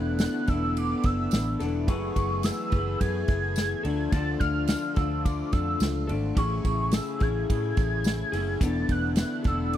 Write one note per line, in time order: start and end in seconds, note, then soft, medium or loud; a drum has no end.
0.00 0.26 E1 loud
0.00 1.86 D3 medium
0.00 0.53 E3 medium
0.00 6.33 A3 medium
0.00 0.49 B3 medium
0.00 1.86 B3 medium
0.00 0.49 D4 loud
0.00 1.84 E4 medium
0.00 0.45 A4 loud
0.00 0.20 F#6 loud
0.19 0.50 F#6 medium
0.19 snare loud
0.19 ride medium
0.19 tambourine medium
0.46 0.93 E1 medium
0.46 1.59 A4 medium
0.46 0.79 E6 medium
0.46 kick loud
0.46 ride medium
0.50 1.62 B3 medium
0.50 1.60 D4 medium
0.77 1.07 D6 loud
0.77 ride medium
1.03 1.27 F#1 medium
1.03 1.61 E6 medium
1.03 kick loud
1.03 ride medium
1.31 1.55 A1 loud
1.31 snare loud
1.31 ride medium
1.31 tambourine medium
1.60 1.88 E1 medium
1.60 1.88 B3 soft
1.60 1.88 D4 medium
1.60 1.88 A4 medium
1.60 snare soft
1.60 ride medium
1.87 2.11 F#1 loud
1.87 3.82 E3 medium
1.87 2.72 F#3 medium
1.87 2.73 A3 medium
1.87 3.82 B3 medium
1.87 2.73 E4 medium
1.87 3.82 G#4 medium
1.87 2.73 G#4 medium
1.87 2.69 B4 loud
1.87 2.46 C#6 medium
1.87 kick loud
1.87 ride medium
2.16 2.50 F#1 loud
2.16 kick medium
2.16 ride medium
2.43 3.01 E6 medium
2.43 snare loud
2.43 ride medium
2.43 tambourine medium
2.70 2.95 F#1 loud
2.70 3.83 B4 medium
2.70 kick loud
2.70 ride medium
2.75 3.85 E4 medium
2.75 3.83 G#4 medium
3.00 3.23 F#2 loud
3.00 4.13 G#6 loud
3.00 kick medium
3.00 ride medium
3.28 3.73 F#1 loud
3.28 kick loud
3.28 ride medium
3.56 snare loud
3.56 ride medium
3.56 tambourine medium
3.83 4.07 D2 loud
3.83 6.34 D3 medium
3.83 6.34 F3 medium
3.83 4.12 A3 medium
3.83 4.13 D4 medium
3.83 6.34 F4 medium
3.83 4.12 A4 medium
3.83 ride medium
4.11 4.35 D2 loud
4.11 4.96 D3 medium
4.11 4.97 F3 medium
4.11 5.02 A3 medium
4.11 4.97 D4 loud
4.11 4.94 A4 loud
4.11 4.39 A6 loud
4.11 kick loud
4.11 ride medium
4.39 4.74 D2 loud
4.39 4.97 F6 loud
4.39 kick medium
4.39 ride medium
4.67 snare loud
4.67 ride medium
4.67 tambourine medium
4.94 5.42 D2 loud
4.94 6.07 A4 medium
4.94 5.26 E6 medium
4.94 kick loud
4.94 ride medium
4.99 6.10 A3 soft
4.99 6.08 D4 medium
5.24 5.54 D6 loud
5.24 kick medium
5.24 ride medium
5.52 5.75 F2 loud
5.52 6.08 E6 medium
5.52 kick loud
5.52 ride medium
5.80 6.10 C#2 loud
5.80 snare loud
5.80 ride medium
5.80 tambourine medium
6.07 6.31 G#1 medium
6.07 6.34 A3 medium
6.07 6.37 D4 medium
6.07 6.36 A4 medium
6.07 ride medium
6.35 6.59 A1 loud
6.35 8.59 C#3 medium
6.35 7.22 A3 medium
6.35 9.77 A3 medium
6.35 7.21 C#4 medium
6.35 9.77 E4 medium
6.35 7.23 E4 medium
6.35 8.59 G#4 medium
6.35 7.18 G#4 medium
6.35 6.95 C#6 medium
6.35 kick loud
6.35 ride medium
6.65 6.98 A1 loud
6.65 kick medium
6.65 ride medium
6.91 7.21 E6 medium
6.91 snare loud
6.91 ride medium
6.91 tambourine medium
7.19 7.43 A1 loud
7.19 8.31 G#4 medium
7.19 8.64 G#6 loud
7.19 kick loud
7.19 ride medium
7.23 8.35 C#4 soft
7.23 8.34 E4 medium
7.50 7.72 A2 loud
7.50 kick medium
7.50 ride medium
7.77 8.22 A1 loud
7.77 kick loud
7.77 ride medium
8.04 snare loud
8.04 ride medium
8.04 tambourine medium
8.32 8.55 F#1 medium
8.32 8.61 C#4 medium
8.32 8.62 E4 medium
8.32 8.61 G#4 medium
8.32 snare soft
8.32 open hi-hat medium
8.32 ride medium
8.60 8.83 E1 loud
8.60 9.77 D3 medium
8.60 9.50 E3 medium
8.60 9.46 B3 medium
8.60 9.77 B3 medium
8.60 9.46 D4 medium
8.60 9.42 A4 loud
8.60 8.90 A6 loud
8.60 kick loud
8.60 hi-hat pedal medium
8.60 ride medium
8.89 9.23 E1 loud
8.89 9.16 F#6 loud
8.89 kick medium
8.89 ride medium
9.16 9.48 F#6 loud
9.16 snare loud
9.16 ride medium
9.16 tambourine medium
9.43 9.77 E1 medium
9.43 9.77 A4 medium
9.43 9.76 E6 medium
9.43 kick loud
9.43 ride medium
9.47 9.77 D4 medium
9.51 9.77 B3 soft
9.73 9.77 D6 medium
9.73 ride medium